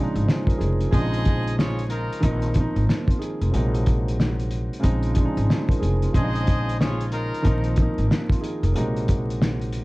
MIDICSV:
0, 0, Header, 1, 5, 480
1, 0, Start_track
1, 0, Key_signature, -5, "minor"
1, 0, Tempo, 652174
1, 682, Time_signature, 4, 2, 24, 8
1, 7244, End_track
2, 0, Start_track
2, 0, Title_t, "Trumpet section"
2, 0, Program_c, 0, 61
2, 679, Note_on_c, 0, 75, 125
2, 680, Note_on_c, 0, 68, 122
2, 680, Note_on_c, 0, 72, 112
2, 1132, Note_off_c, 0, 68, 0
2, 1132, Note_off_c, 0, 72, 0
2, 1132, Note_off_c, 0, 75, 0
2, 1162, Note_on_c, 0, 65, 91
2, 1162, Note_on_c, 0, 68, 97
2, 1162, Note_on_c, 0, 73, 98
2, 1354, Note_off_c, 0, 65, 0
2, 1354, Note_off_c, 0, 68, 0
2, 1354, Note_off_c, 0, 73, 0
2, 1396, Note_on_c, 0, 63, 90
2, 1396, Note_on_c, 0, 65, 86
2, 1396, Note_on_c, 0, 70, 97
2, 1850, Note_off_c, 0, 63, 0
2, 1850, Note_off_c, 0, 65, 0
2, 1850, Note_off_c, 0, 70, 0
2, 4525, Note_on_c, 0, 75, 127
2, 4526, Note_on_c, 0, 68, 125
2, 4526, Note_on_c, 0, 72, 112
2, 4975, Note_off_c, 0, 68, 0
2, 4975, Note_off_c, 0, 72, 0
2, 4975, Note_off_c, 0, 75, 0
2, 5003, Note_on_c, 0, 65, 95
2, 5003, Note_on_c, 0, 68, 101
2, 5003, Note_on_c, 0, 73, 99
2, 5195, Note_off_c, 0, 65, 0
2, 5195, Note_off_c, 0, 68, 0
2, 5195, Note_off_c, 0, 73, 0
2, 5240, Note_on_c, 0, 63, 86
2, 5240, Note_on_c, 0, 65, 90
2, 5240, Note_on_c, 0, 70, 111
2, 5692, Note_off_c, 0, 63, 0
2, 5692, Note_off_c, 0, 65, 0
2, 5692, Note_off_c, 0, 70, 0
2, 7244, End_track
3, 0, Start_track
3, 0, Title_t, "Grand piano"
3, 0, Program_c, 1, 0
3, 0, Control_c, 1, 64, 127
3, 0, Note_on_c, 1, 49, 91
3, 0, Note_on_c, 1, 53, 86
3, 0, Note_on_c, 1, 56, 87
3, 0, Note_on_c, 1, 60, 81
3, 0, Note_on_c, 1, 62, 86
3, 0, Note_on_c, 1, 63, 111
3, 22, Note_off_c, 1, 63, 0
3, 22, Note_on_c, 1, 63, 99
3, 187, Note_on_c, 1, 72, 67
3, 191, Note_on_c, 1, 65, 53
3, 204, Note_off_c, 1, 60, 0
3, 232, Note_off_c, 1, 63, 0
3, 334, Note_off_c, 1, 72, 0
3, 337, Note_off_c, 1, 65, 0
3, 347, Note_on_c, 1, 70, 70
3, 351, Note_on_c, 1, 65, 59
3, 427, Note_on_c, 1, 68, 80
3, 431, Note_on_c, 1, 63, 63
3, 435, Note_off_c, 1, 70, 0
3, 438, Note_off_c, 1, 65, 0
3, 478, Note_off_c, 1, 49, 0
3, 482, Note_off_c, 1, 53, 0
3, 485, Note_off_c, 1, 56, 0
3, 574, Note_off_c, 1, 68, 0
3, 577, Note_off_c, 1, 63, 0
3, 598, Note_on_c, 1, 65, 67
3, 602, Note_on_c, 1, 60, 51
3, 670, Note_on_c, 1, 49, 88
3, 677, Note_on_c, 1, 53, 86
3, 681, Note_off_c, 1, 60, 0
3, 685, Note_on_c, 1, 56, 78
3, 691, Control_c, 1, 64, 0
3, 692, Note_on_c, 1, 60, 79
3, 697, Note_off_c, 1, 62, 0
3, 700, Note_on_c, 1, 62, 71
3, 748, Note_on_c, 1, 63, 98
3, 750, Note_off_c, 1, 62, 0
3, 801, Control_c, 1, 64, 127
3, 822, Note_off_c, 1, 65, 0
3, 1372, Note_off_c, 1, 49, 0
3, 1375, Note_off_c, 1, 53, 0
3, 1379, Note_off_c, 1, 56, 0
3, 1383, Note_off_c, 1, 60, 0
3, 1411, Note_off_c, 1, 63, 0
3, 1621, Note_on_c, 1, 51, 100
3, 1628, Note_on_c, 1, 53, 90
3, 1636, Note_on_c, 1, 58, 83
3, 1643, Note_on_c, 1, 60, 90
3, 1649, Control_c, 1, 64, 0
3, 1651, Note_on_c, 1, 63, 107
3, 1769, Control_c, 1, 64, 127
3, 1835, Note_off_c, 1, 51, 0
3, 1838, Note_off_c, 1, 53, 0
3, 1842, Note_off_c, 1, 58, 0
3, 1846, Note_off_c, 1, 60, 0
3, 1850, Note_off_c, 1, 63, 0
3, 1884, Note_on_c, 1, 51, 91
3, 1892, Note_on_c, 1, 53, 87
3, 1899, Note_on_c, 1, 58, 79
3, 1907, Note_on_c, 1, 60, 78
3, 1914, Note_on_c, 1, 63, 99
3, 2091, Note_off_c, 1, 63, 0
3, 2096, Note_off_c, 1, 58, 0
3, 2102, Note_on_c, 1, 63, 58
3, 2107, Note_on_c, 1, 58, 55
3, 2134, Note_off_c, 1, 60, 0
3, 2252, Note_off_c, 1, 63, 0
3, 2254, Note_off_c, 1, 58, 0
3, 2276, Note_on_c, 1, 65, 73
3, 2280, Note_on_c, 1, 60, 65
3, 2347, Note_on_c, 1, 68, 71
3, 2352, Note_on_c, 1, 63, 64
3, 2360, Note_off_c, 1, 65, 0
3, 2363, Note_off_c, 1, 60, 0
3, 2408, Note_off_c, 1, 51, 0
3, 2412, Note_off_c, 1, 53, 0
3, 2495, Note_off_c, 1, 68, 0
3, 2497, Note_off_c, 1, 63, 0
3, 2519, Note_on_c, 1, 70, 68
3, 2524, Note_on_c, 1, 65, 54
3, 2588, Note_on_c, 1, 48, 88
3, 2596, Note_on_c, 1, 54, 82
3, 2603, Note_on_c, 1, 56, 82
3, 2611, Note_on_c, 1, 58, 82
3, 2613, Control_c, 1, 64, 0
3, 2619, Note_on_c, 1, 63, 96
3, 2728, Control_c, 1, 64, 127
3, 2743, Note_off_c, 1, 70, 0
3, 2745, Note_off_c, 1, 65, 0
3, 3291, Note_off_c, 1, 48, 0
3, 3295, Note_off_c, 1, 54, 0
3, 3298, Note_off_c, 1, 56, 0
3, 3302, Note_off_c, 1, 58, 0
3, 3306, Note_off_c, 1, 63, 0
3, 3531, Note_on_c, 1, 49, 100
3, 3539, Note_on_c, 1, 53, 86
3, 3546, Note_on_c, 1, 56, 89
3, 3554, Note_on_c, 1, 60, 95
3, 3562, Note_on_c, 1, 63, 105
3, 3570, Control_c, 1, 64, 0
3, 3706, Control_c, 1, 64, 127
3, 3750, Note_off_c, 1, 49, 0
3, 3753, Note_off_c, 1, 53, 0
3, 3757, Note_off_c, 1, 56, 0
3, 3761, Note_off_c, 1, 60, 0
3, 3765, Note_off_c, 1, 63, 0
3, 3784, Note_on_c, 1, 49, 93
3, 3792, Note_on_c, 1, 53, 87
3, 3799, Note_on_c, 1, 56, 85
3, 3807, Note_on_c, 1, 60, 80
3, 3815, Note_on_c, 1, 62, 85
3, 3862, Note_on_c, 1, 63, 101
3, 3867, Note_off_c, 1, 62, 0
3, 4026, Note_on_c, 1, 72, 72
3, 4030, Note_on_c, 1, 65, 53
3, 4044, Note_off_c, 1, 60, 0
3, 4072, Note_off_c, 1, 63, 0
3, 4174, Note_off_c, 1, 72, 0
3, 4176, Note_off_c, 1, 65, 0
3, 4187, Note_on_c, 1, 70, 71
3, 4191, Note_on_c, 1, 65, 60
3, 4267, Note_on_c, 1, 68, 82
3, 4271, Note_on_c, 1, 63, 64
3, 4275, Note_off_c, 1, 70, 0
3, 4277, Note_off_c, 1, 65, 0
3, 4318, Note_off_c, 1, 49, 0
3, 4321, Note_off_c, 1, 53, 0
3, 4325, Note_off_c, 1, 56, 0
3, 4415, Note_off_c, 1, 68, 0
3, 4417, Note_off_c, 1, 63, 0
3, 4438, Note_on_c, 1, 65, 68
3, 4443, Note_on_c, 1, 60, 51
3, 4511, Note_on_c, 1, 49, 87
3, 4518, Note_on_c, 1, 53, 88
3, 4522, Note_off_c, 1, 60, 0
3, 4526, Note_on_c, 1, 56, 77
3, 4531, Control_c, 1, 64, 0
3, 4533, Note_on_c, 1, 60, 82
3, 4541, Note_on_c, 1, 62, 71
3, 4589, Note_on_c, 1, 63, 99
3, 4590, Note_off_c, 1, 62, 0
3, 4647, Control_c, 1, 64, 127
3, 4662, Note_off_c, 1, 65, 0
3, 5212, Note_off_c, 1, 49, 0
3, 5216, Note_off_c, 1, 53, 0
3, 5219, Note_off_c, 1, 56, 0
3, 5223, Note_off_c, 1, 60, 0
3, 5251, Note_off_c, 1, 63, 0
3, 5463, Note_on_c, 1, 51, 98
3, 5470, Note_on_c, 1, 53, 93
3, 5478, Note_on_c, 1, 58, 84
3, 5485, Note_on_c, 1, 60, 91
3, 5491, Control_c, 1, 64, 0
3, 5493, Note_on_c, 1, 63, 111
3, 5606, Control_c, 1, 64, 127
3, 5675, Note_off_c, 1, 51, 0
3, 5679, Note_off_c, 1, 53, 0
3, 5683, Note_off_c, 1, 58, 0
3, 5687, Note_off_c, 1, 60, 0
3, 5690, Note_off_c, 1, 63, 0
3, 5725, Note_on_c, 1, 51, 92
3, 5732, Note_on_c, 1, 53, 89
3, 5740, Note_on_c, 1, 58, 81
3, 5748, Note_on_c, 1, 60, 80
3, 5755, Note_on_c, 1, 63, 96
3, 5932, Note_off_c, 1, 63, 0
3, 5937, Note_off_c, 1, 58, 0
3, 5943, Note_on_c, 1, 63, 60
3, 5948, Note_on_c, 1, 58, 54
3, 5975, Note_off_c, 1, 60, 0
3, 6092, Note_off_c, 1, 63, 0
3, 6095, Note_off_c, 1, 58, 0
3, 6117, Note_on_c, 1, 65, 75
3, 6121, Note_on_c, 1, 60, 64
3, 6189, Note_on_c, 1, 68, 70
3, 6193, Note_on_c, 1, 63, 64
3, 6201, Note_off_c, 1, 65, 0
3, 6203, Note_off_c, 1, 60, 0
3, 6248, Note_off_c, 1, 51, 0
3, 6252, Note_off_c, 1, 53, 0
3, 6335, Note_off_c, 1, 68, 0
3, 6338, Note_off_c, 1, 63, 0
3, 6360, Note_on_c, 1, 70, 68
3, 6364, Note_on_c, 1, 65, 53
3, 6429, Note_on_c, 1, 48, 88
3, 6437, Note_on_c, 1, 54, 81
3, 6445, Note_on_c, 1, 56, 81
3, 6452, Control_c, 1, 64, 0
3, 6452, Note_on_c, 1, 58, 84
3, 6459, Note_on_c, 1, 63, 95
3, 6583, Note_off_c, 1, 70, 0
3, 6585, Note_off_c, 1, 65, 0
3, 6589, Control_c, 1, 64, 127
3, 7131, Note_off_c, 1, 48, 0
3, 7135, Note_off_c, 1, 54, 0
3, 7139, Note_off_c, 1, 56, 0
3, 7143, Note_off_c, 1, 58, 0
3, 7146, Note_off_c, 1, 63, 0
3, 7244, End_track
4, 0, Start_track
4, 0, Title_t, "Upright bass"
4, 0, Program_c, 2, 32
4, 113, Note_on_c, 2, 32, 94
4, 181, Note_off_c, 2, 32, 0
4, 445, Note_on_c, 2, 29, 89
4, 625, Note_off_c, 2, 29, 0
4, 683, Note_on_c, 2, 34, 106
4, 1521, Note_off_c, 2, 34, 0
4, 1644, Note_on_c, 2, 34, 113
4, 1937, Note_off_c, 2, 34, 0
4, 2033, Note_on_c, 2, 32, 92
4, 2101, Note_off_c, 2, 32, 0
4, 2513, Note_on_c, 2, 29, 99
4, 2581, Note_off_c, 2, 29, 0
4, 2605, Note_on_c, 2, 34, 105
4, 3442, Note_off_c, 2, 34, 0
4, 3564, Note_on_c, 2, 34, 109
4, 3857, Note_off_c, 2, 34, 0
4, 3952, Note_on_c, 2, 32, 95
4, 4021, Note_off_c, 2, 32, 0
4, 4284, Note_on_c, 2, 29, 92
4, 4465, Note_off_c, 2, 29, 0
4, 4524, Note_on_c, 2, 34, 105
4, 5361, Note_off_c, 2, 34, 0
4, 5485, Note_on_c, 2, 34, 113
4, 5777, Note_off_c, 2, 34, 0
4, 5873, Note_on_c, 2, 32, 89
4, 5941, Note_off_c, 2, 32, 0
4, 6353, Note_on_c, 2, 29, 98
4, 6421, Note_off_c, 2, 29, 0
4, 6446, Note_on_c, 2, 34, 107
4, 7244, Note_off_c, 2, 34, 0
4, 7244, End_track
5, 0, Start_track
5, 0, Title_t, "Drums"
5, 114, Note_on_c, 9, 42, 50
5, 187, Note_off_c, 9, 42, 0
5, 209, Note_on_c, 9, 40, 92
5, 210, Note_on_c, 9, 38, 117
5, 282, Note_off_c, 9, 40, 0
5, 283, Note_off_c, 9, 38, 0
5, 345, Note_on_c, 9, 36, 102
5, 365, Note_on_c, 9, 42, 56
5, 419, Note_off_c, 9, 36, 0
5, 439, Note_off_c, 9, 42, 0
5, 449, Note_on_c, 9, 42, 78
5, 522, Note_off_c, 9, 42, 0
5, 593, Note_on_c, 9, 42, 59
5, 667, Note_off_c, 9, 42, 0
5, 682, Note_on_c, 9, 36, 114
5, 684, Note_on_c, 9, 42, 84
5, 756, Note_off_c, 9, 36, 0
5, 757, Note_off_c, 9, 42, 0
5, 836, Note_on_c, 9, 42, 56
5, 910, Note_off_c, 9, 42, 0
5, 922, Note_on_c, 9, 42, 85
5, 929, Note_on_c, 9, 36, 99
5, 996, Note_off_c, 9, 42, 0
5, 1002, Note_off_c, 9, 36, 0
5, 1086, Note_on_c, 9, 42, 60
5, 1159, Note_off_c, 9, 42, 0
5, 1169, Note_on_c, 9, 40, 106
5, 1170, Note_on_c, 9, 38, 127
5, 1243, Note_off_c, 9, 40, 0
5, 1244, Note_off_c, 9, 38, 0
5, 1315, Note_on_c, 9, 42, 52
5, 1389, Note_off_c, 9, 42, 0
5, 1398, Note_on_c, 9, 42, 79
5, 1471, Note_off_c, 9, 42, 0
5, 1564, Note_on_c, 9, 42, 57
5, 1637, Note_off_c, 9, 42, 0
5, 1639, Note_on_c, 9, 42, 92
5, 1643, Note_on_c, 9, 36, 91
5, 1713, Note_off_c, 9, 42, 0
5, 1716, Note_off_c, 9, 36, 0
5, 1781, Note_on_c, 9, 42, 60
5, 1854, Note_off_c, 9, 42, 0
5, 1871, Note_on_c, 9, 42, 90
5, 1883, Note_on_c, 9, 36, 98
5, 1944, Note_off_c, 9, 42, 0
5, 1956, Note_off_c, 9, 36, 0
5, 2033, Note_on_c, 9, 42, 49
5, 2107, Note_off_c, 9, 42, 0
5, 2129, Note_on_c, 9, 40, 92
5, 2130, Note_on_c, 9, 38, 116
5, 2202, Note_off_c, 9, 40, 0
5, 2203, Note_off_c, 9, 38, 0
5, 2265, Note_on_c, 9, 36, 103
5, 2285, Note_on_c, 9, 42, 58
5, 2339, Note_off_c, 9, 36, 0
5, 2359, Note_off_c, 9, 42, 0
5, 2368, Note_on_c, 9, 42, 75
5, 2442, Note_off_c, 9, 42, 0
5, 2513, Note_on_c, 9, 42, 62
5, 2587, Note_off_c, 9, 42, 0
5, 2604, Note_on_c, 9, 42, 88
5, 2677, Note_off_c, 9, 42, 0
5, 2756, Note_on_c, 9, 42, 57
5, 2830, Note_off_c, 9, 42, 0
5, 2843, Note_on_c, 9, 42, 85
5, 2849, Note_on_c, 9, 36, 101
5, 2916, Note_off_c, 9, 42, 0
5, 2922, Note_off_c, 9, 36, 0
5, 3006, Note_on_c, 9, 42, 61
5, 3079, Note_off_c, 9, 42, 0
5, 3089, Note_on_c, 9, 40, 105
5, 3090, Note_on_c, 9, 38, 127
5, 3163, Note_off_c, 9, 38, 0
5, 3163, Note_off_c, 9, 40, 0
5, 3235, Note_on_c, 9, 42, 50
5, 3309, Note_off_c, 9, 42, 0
5, 3318, Note_on_c, 9, 42, 77
5, 3391, Note_off_c, 9, 42, 0
5, 3483, Note_on_c, 9, 42, 56
5, 3557, Note_off_c, 9, 42, 0
5, 3559, Note_on_c, 9, 42, 95
5, 3563, Note_on_c, 9, 36, 93
5, 3632, Note_off_c, 9, 42, 0
5, 3636, Note_off_c, 9, 36, 0
5, 3700, Note_on_c, 9, 42, 62
5, 3773, Note_off_c, 9, 42, 0
5, 3790, Note_on_c, 9, 42, 85
5, 3802, Note_on_c, 9, 36, 96
5, 3864, Note_off_c, 9, 42, 0
5, 3876, Note_off_c, 9, 36, 0
5, 3953, Note_on_c, 9, 42, 51
5, 4027, Note_off_c, 9, 42, 0
5, 4049, Note_on_c, 9, 38, 116
5, 4049, Note_on_c, 9, 40, 94
5, 4122, Note_off_c, 9, 40, 0
5, 4123, Note_off_c, 9, 38, 0
5, 4185, Note_on_c, 9, 36, 102
5, 4205, Note_on_c, 9, 42, 56
5, 4259, Note_off_c, 9, 36, 0
5, 4279, Note_off_c, 9, 42, 0
5, 4289, Note_on_c, 9, 42, 75
5, 4363, Note_off_c, 9, 42, 0
5, 4433, Note_on_c, 9, 42, 59
5, 4507, Note_off_c, 9, 42, 0
5, 4522, Note_on_c, 9, 36, 114
5, 4524, Note_on_c, 9, 42, 83
5, 4596, Note_off_c, 9, 36, 0
5, 4598, Note_off_c, 9, 42, 0
5, 4677, Note_on_c, 9, 42, 54
5, 4751, Note_off_c, 9, 42, 0
5, 4763, Note_on_c, 9, 42, 87
5, 4769, Note_on_c, 9, 36, 98
5, 4837, Note_off_c, 9, 42, 0
5, 4843, Note_off_c, 9, 36, 0
5, 4927, Note_on_c, 9, 42, 63
5, 5000, Note_off_c, 9, 42, 0
5, 5010, Note_on_c, 9, 40, 104
5, 5011, Note_on_c, 9, 38, 126
5, 5083, Note_off_c, 9, 40, 0
5, 5084, Note_off_c, 9, 38, 0
5, 5156, Note_on_c, 9, 42, 54
5, 5230, Note_off_c, 9, 42, 0
5, 5239, Note_on_c, 9, 42, 79
5, 5312, Note_off_c, 9, 42, 0
5, 5404, Note_on_c, 9, 42, 56
5, 5478, Note_off_c, 9, 42, 0
5, 5480, Note_on_c, 9, 42, 90
5, 5483, Note_on_c, 9, 36, 93
5, 5554, Note_off_c, 9, 42, 0
5, 5557, Note_off_c, 9, 36, 0
5, 5621, Note_on_c, 9, 42, 61
5, 5695, Note_off_c, 9, 42, 0
5, 5712, Note_on_c, 9, 42, 89
5, 5723, Note_on_c, 9, 36, 99
5, 5785, Note_off_c, 9, 42, 0
5, 5797, Note_off_c, 9, 36, 0
5, 5874, Note_on_c, 9, 42, 51
5, 5948, Note_off_c, 9, 42, 0
5, 5969, Note_on_c, 9, 40, 92
5, 5970, Note_on_c, 9, 38, 119
5, 6043, Note_off_c, 9, 38, 0
5, 6043, Note_off_c, 9, 40, 0
5, 6106, Note_on_c, 9, 36, 101
5, 6126, Note_on_c, 9, 42, 58
5, 6179, Note_off_c, 9, 36, 0
5, 6200, Note_off_c, 9, 42, 0
5, 6209, Note_on_c, 9, 42, 76
5, 6283, Note_off_c, 9, 42, 0
5, 6354, Note_on_c, 9, 42, 60
5, 6428, Note_off_c, 9, 42, 0
5, 6445, Note_on_c, 9, 42, 85
5, 6519, Note_off_c, 9, 42, 0
5, 6598, Note_on_c, 9, 42, 55
5, 6672, Note_off_c, 9, 42, 0
5, 6684, Note_on_c, 9, 42, 88
5, 6690, Note_on_c, 9, 36, 97
5, 6757, Note_off_c, 9, 42, 0
5, 6763, Note_off_c, 9, 36, 0
5, 6847, Note_on_c, 9, 42, 59
5, 6920, Note_off_c, 9, 42, 0
5, 6929, Note_on_c, 9, 40, 108
5, 6930, Note_on_c, 9, 38, 127
5, 7003, Note_off_c, 9, 40, 0
5, 7004, Note_off_c, 9, 38, 0
5, 7076, Note_on_c, 9, 42, 51
5, 7150, Note_off_c, 9, 42, 0
5, 7158, Note_on_c, 9, 42, 80
5, 7232, Note_off_c, 9, 42, 0
5, 7244, End_track
0, 0, End_of_file